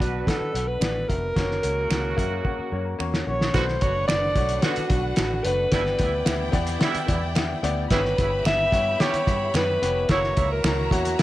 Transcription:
Already playing: F#3 D4 F#4 B4
0.00 B1 B3 D4 F#4 D5, kick, closed hi-hat
0.26 B3 D4 F#4 A4 D5, kick, snare, closed hi-hat
0.41 muted fingered electric bass stroke
0.53 B1 B3 D4 F#4 A4, closed hi-hat
0.67 B4
0.80 A1 B3 D4 F#4 D5, finger snap, snare, closed hi-hat
1.08 F1 B3 D4 F#4 A#4 E5, kick, closed hi-hat
1.36 F#1 C#3 A#3 C#4 F#4 C#5, kick, snare, closed hi-hat
1.51 snare
1.62 C#2 A#3 C#4 F#4 C#5, closed hi-hat
1.89 C#2 A#3 C#4 F#4 C#5, finger snap, snare, closed hi-hat
2.16 F#2 A#3 C#4 F#4 C#5 E5, kick, closed hi-hat
2.44 A#3 C#4 F#4 C#5 F#5, kick
2.59 muted fingered electric bass stroke
2.72 F#2 A#3 C#4 F#4 C#5
2.85 A#5
2.99 E2 A#3 C#4 F#4 C#5 A#5, finger snap
3.14 snare
3.26 A#1 A#3 C#4 F#4 C#5
3.41 snare
3.53 B1 B2 D3 A3 B3 D4 F#4 B4 C5 F#5, kick, snare, closed hi-hat
3.68 snare
3.80 F#1 D3 A3 B3 D4 F#4 B4 C#5, kick, closed hi-hat
4.08 F#1 A3 D4 F#4 B4 D5, finger snap, snare, closed hi-hat
4.36 B1 A3 D4 F#4 C#5, kick, closed hi-hat
4.49 closed hi-hat
4.62 D3 A3 B3 D4 F#4 B4, snare, closed hi-hat
4.76 muted fingered electric bass stroke, closed hi-hat
4.90 B1 A3 D4 F#4 B4, kick, closed hi-hat
5.16 A1 A3 D4 F#4 B4, finger snap, snare, closed hi-hat
5.45 F#1 A3 D4 F#4 B4, closed hi-hat
5.72 G1 G2 B2 G3 B3 E4 G4 D5 G5, kick, snare, closed hi-hat
5.86 snare
5.99 D2 B2 G3 B3 E4 G4 D5, kick, closed hi-hat
6.25 D2 B3 E4 G4 E5, finger snap, snare, closed hi-hat
6.52 E2 B3 E4 G4 D5, kick, closed hi-hat
6.67 closed hi-hat
6.79 B2 G3 B3 E4 G4 D5, snare, closed hi-hat
6.95 muted fingered electric bass stroke, closed hi-hat
7.06 E2 B3 E4 G4 D5, kick, closed hi-hat
7.35 B3 E4 G4 E5, finger snap, snare, closed hi-hat
7.63 D2 B3 E4 G4 D5, closed hi-hat
7.90 G1 G2 C#3 B3 E4 G4 B4 C#5 E5 B5, kick, snare, closed hi-hat
8.05 snare
8.18 G1 C#3 B3 E4 G4 C#5, kick, closed hi-hat
8.45 G1 B3 E4 G4 E5, finger snap, snare, closed hi-hat
8.72 G2 B3 E4 G4 C#5, kick, closed hi-hat
8.99 E3 B3 C#4 E4 G4 C#5, snare, closed hi-hat
9.14 muted fingered electric bass stroke, closed hi-hat
9.27 G2 B3 E4 G4 C#5, kick, closed hi-hat
9.54 F#2 B3 E4 G4 B4 C#5, finger snap, snare, closed hi-hat
9.82 F1 B3 E4 G4 C#5, closed hi-hat
10.09 F#1 C#3 A#3 E4 F#4 C#5 E5 A#5, kick, snare, closed hi-hat
10.24 snare
10.36 C#2 C#3 A#3 E4 F#4 C#5, kick, closed hi-hat
10.52 A#4
10.64 C#2 A#3 E4 F#4 C#5, finger snap, snare, closed hi-hat
10.91 E2 A#3 E4 F#4 C#5, kick, closed hi-hat
11.05 closed hi-hat
11.18 C#3 A#3 E4 F#4, snare, closed hi-hat

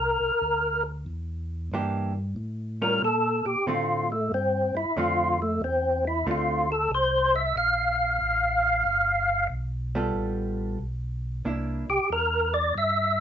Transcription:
Already playing: C2 A#4
0.20 C2
0.41 D2
1.06 E2
1.72 G2 E3 A#3 D4 G4
2.36 A2
2.82 G3 C#4 F4 A#4
3.02 A#2 A4
3.45 A#2 G4
3.66 A2 D3 A3 C4 F4
4.12 A3
4.32 G2 C4
4.75 G2 E4
4.96 F2 D3 A3 C4 F4
5.42 A3
5.61 E2 C4
6.07 E4
6.26 D2 D3 A3 C4 F4
6.31 F4
6.72 A4
6.90 C2
6.95 C5
7.36 E5
7.55 A#1 F5
8.20 A1
8.85 G1
9.50 B1
9.95 G3 B3 F4 A4
10.14 A1
10.79 B1
11.45 C2 A#3 D4 E4
11.89 C2 G4
12.10 E2 A#4
12.54 D5
12.75 G2 E5

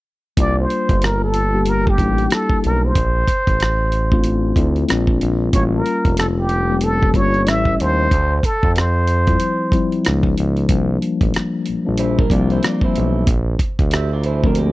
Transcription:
0.37 C2 G3 A#3 D4 F4 D5, kick, closed hi-hat
0.61 C5
0.70 closed hi-hat
0.89 G1, kick, closed hi-hat
1.02 A#4, cross-stick, closed hi-hat
1.24 A4
1.34 closed hi-hat
1.53 G3 A#3 D4 G4
1.66 A#4, closed hi-hat
1.87 G4, kick
1.98 A1 G3 A#3 D4 E4, kick, closed hi-hat
2.18 closed hi-hat
2.30 A4, cross-stick, closed hi-hat
2.50 kick
2.64 B1 A#4, closed hi-hat
2.86 C5
2.95 A#1, kick, closed hi-hat
3.28 kick, closed hi-hat
3.47 A1, kick, closed hi-hat
3.60 cross-stick, closed hi-hat
3.92 closed hi-hat
4.12 A3 C4 D4 F4, kick
4.24 closed hi-hat
4.56 D2 A3 C4 D4 E4, kick, closed hi-hat
4.76 closed hi-hat
4.89 A#1 G#3 C4 D4 F4, cross-stick, closed hi-hat
5.07 A#1, kick
5.21 A#1, closed hi-hat
5.52 A1 G3 A#3 C#4 F4 C#5, kick, closed hi-hat
5.74 A#4
5.86 closed hi-hat
6.05 F1, kick, closed hi-hat
6.17 A4, cross-stick, closed hi-hat
6.39 G4
6.49 closed hi-hat
6.69 G3 A#3 C#4 G4
6.81 A4, closed hi-hat
7.03 kick
7.14 G1 G3 A#3 C#4 F4 C#5, kick, closed hi-hat
7.34 closed hi-hat
7.46 A1 G3 A3 C#4 E4 E5, cross-stick, closed hi-hat
7.65 kick
7.80 D#2 C5, closed hi-hat
8.11 D2, kick, closed hi-hat
8.43 A4, kick, closed hi-hat
8.63 F2, kick
8.76 C5, cross-stick, closed hi-hat
9.07 closed hi-hat
9.27 F3 G3 C4 E4, kick, closed hi-hat
9.40 closed hi-hat
9.72 F3 G3 C4 E4, kick, closed hi-hat
9.92 closed hi-hat
10.04 C#2 F3 G#3 B3 D#4, cross-stick, closed hi-hat
10.23 C#2, kick
10.38 C#2, closed hi-hat
10.57 closed hi-hat
10.68 C2 F3 G3 A#3 D4, kick, closed hi-hat
11.02 closed hi-hat
11.21 A1, kick, closed hi-hat
11.34 cross-stick, closed hi-hat
11.66 A#1, closed hi-hat
11.85 A#1 F3 G3 A#3 D4
11.97 E4 C5, closed hi-hat
12.19 D4 A#4, kick
12.30 C2 F3 G3 A#3 C4 F4 D5, kick, closed hi-hat
12.50 E4 C5, closed hi-hat
12.63 F4 D5, cross-stick, closed hi-hat
12.81 E4 C5, kick
12.96 B1, closed hi-hat
13.27 A#1, kick, closed hi-hat
13.59 kick, closed hi-hat
13.79 D2, kick, closed hi-hat
13.91 G4 E5, cross-stick, closed hi-hat
14.13 F4 D5
14.24 E4 C5, closed hi-hat
14.43 F3 A3 C4 D4 A#4, kick
14.55 A#3 G4, closed hi-hat

